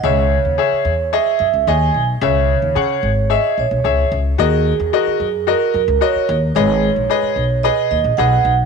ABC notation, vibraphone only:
X:1
M:4/4
L:1/16
Q:1/4=111
K:C#dor
V:1 name="Vibraphone"
c8 e2 e2 g3 z | c8 d2 c4 z2 | G8 A2 A2 c3 z | c8 d2 d2 f3 z |]